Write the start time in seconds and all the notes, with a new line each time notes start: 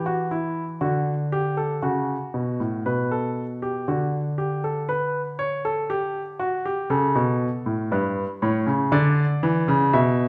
Already playing: E3
0.06 F#4
0.31 E4
0.81 D3 F#4
1.32 G4
1.57 A4
1.82 C#3 F#4
2.34 B2
2.60 A2
2.86 B2 B4
3.11 A4
3.62 G4
3.88 D3 F#4
4.38 G4
4.64 A4
4.89 B4
5.39 C#5
5.65 A4
5.90 G4
6.40 F#4
6.65 G4
6.90 C#3 A4
7.15 B2
7.66 A2
7.91 G2 B4
8.42 A2 C#5
8.67 C#3
8.92 D3 D5
9.43 E3
9.68 C#3
9.93 B2 E5